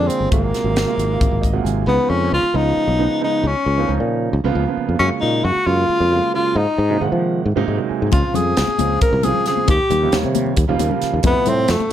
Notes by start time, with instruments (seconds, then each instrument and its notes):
Already playing: grand piano D3 F3
0.00 grand piano G#3 A#3 G#4
0.08 tenor saxophone C4, muted fretless electric bass stroke, closed hi-hat
0.20 fretless electric bass G1
0.30 fretless electric bass G#1, grand piano C3 F#3 G#3 A#3 F4, tenor saxophone A#3, kick, closed hi-hat
0.54 snare, closed hi-hat
0.64 fretless electric bass G#1, grand piano C3 F#3 G#3 A#3 F4
0.76 snare, closed hi-hat
0.86 grand piano C3 F#3 G#3 A#3 F4
0.98 fretless electric bass G#1, closed hi-hat
1.21 fretless electric bass G#1, kick, closed hi-hat
1.31 fretless electric bass G#1
1.42 grand piano D#5, kick, closed hi-hat
1.53 grand piano C3 F#3 G#3 A#3 F4 F#5
1.64 fretless electric bass G#1, grand piano G#5, closed hi-hat
1.86 fretless electric bass C#2, grand piano C#3 F3 G#3 B3 D#4, tenor saxophone B3
2.10 fretless electric bass F2, tenor saxophone C#4
2.32 fretless electric bass C#2, tenor saxophone F4
2.53 fretless electric bass C#2, grand piano C#3 F3 G#3 B3 F4, tenor saxophone D#4
2.77 muted fretless electric bass stroke
2.88 fretless electric bass B1
2.99 grand piano C#3 F3 G#3 B3 D#4
3.20 grand piano C#3 F3 G#3 B3 D#4, tenor saxophone D#4
3.44 fretless electric bass C#2, tenor saxophone C#4
3.66 fretless electric bass C#2
3.77 grand piano C#3 F3 A#3 B3 D#4
3.88 fretless electric bass C#2, grand piano C#3 F3 A#3 C#4 D#4
4.00 fretless electric bass A#2
4.33 fretless electric bass C#2
4.44 fretless electric bass C#2, grand piano C#3 F3 A#3 B3 F4
4.55 fretless electric bass C#2
4.67 grand piano C#3 F3 A#3 B3 F4
4.77 muted fretless electric bass stroke
4.89 fretless electric bass F2
4.99 fretless electric bass F#2, grand piano C#3 F#3 G#3 A#3 F4, tenor saxophone C#4
5.21 fretless electric bass A#2, tenor saxophone D#4
5.45 fretless electric bass F#2, tenor saxophone F#4
5.56 muted fretless electric bass stroke
5.66 fretless electric bass F#2, grand piano C#3 F#3 G#3 A#3 F4, tenor saxophone F4
5.89 muted fretless electric bass stroke
6.00 fretless electric bass F2
6.10 grand piano C#3 F#3 G#3 A#3 F4
6.34 grand piano C#3 F#3 G#3 A#3 F4, tenor saxophone F4
6.55 fretless electric bass G#2, tenor saxophone D#4
6.78 fretless electric bass G#2
6.89 grand piano C3 F#3 G#3 A#3 D#4
7.00 fretless electric bass G#2, grand piano C3 D#3 G#3 A#3 F#5
7.12 fretless electric bass F3
7.46 fretless electric bass G#2
7.56 fretless electric bass G#2, grand piano C3 F#3 G#3 A#3 D#4
7.68 fretless electric bass G#2, grand piano D#5
7.77 grand piano C3 F#3 G#3 A#3 D#4
7.89 grand piano G#5, muted fretless electric bass stroke
8.02 fretless electric bass G#2
8.11 fretless electric bass C#2, grand piano C#3 F3 G#3 C4 F4, tenor saxophone F4, kick, closed hi-hat, muted conga
8.34 fretless electric bass F2, tenor saxophone G#4, closed hi-hat, low conga
8.57 fretless electric bass C#2, snare, closed hi-hat
8.68 muted fretless electric bass stroke, muted conga
8.78 fretless electric bass C#2, grand piano C#3 F3 G#3 C4 F4, closed hi-hat, high conga
9.01 tenor saxophone A#4, muted fretless electric bass stroke, kick, closed hi-hat
9.13 fretless electric bass C2
9.23 grand piano C#3 F3 G#3 C4 F4, tenor saxophone G#4, closed hi-hat, muted conga, low conga
9.34 low conga
9.46 grand piano C#3 F3 G#3 C4 G#4, tenor saxophone G#4, snare, closed hi-hat
9.57 high conga
9.68 fretless electric bass D#2, tenor saxophone G4, kick, closed hi-hat, muted conga
9.80 low conga
9.90 fretless electric bass D#2, closed hi-hat, low conga
10.02 grand piano C#3 F3 G3 A#3 D#4
10.12 fretless electric bass D#2, grand piano D#3 F3 G3 A#3 C#5, snare, closed hi-hat
10.23 fretless electric bass C3, muted conga
10.35 closed hi-hat, high conga
10.46 low conga
10.57 fretless electric bass D#2, kick, closed hi-hat
10.68 fretless electric bass D#2, grand piano C#3 F3 G3 A#3 F4
10.79 fretless electric bass D#2, grand piano A#4, closed hi-hat, muted conga, low conga
10.89 grand piano C#3 F3 G3 A#3 F4, low conga
11.02 muted fretless electric bass stroke, snare, closed hi-hat
11.14 fretless electric bass D#2
11.23 fretless electric bass F2, grand piano C3 F3 G3 A3 E4, tenor saxophone B3, kick, closed hi-hat, muted conga
11.36 low conga
11.46 fretless electric bass A2, tenor saxophone C4, closed hi-hat, low conga
11.68 fretless electric bass F2, tenor saxophone A3, snare, closed hi-hat
11.80 muted fretless electric bass stroke, muted conga
11.89 grand piano C3 F3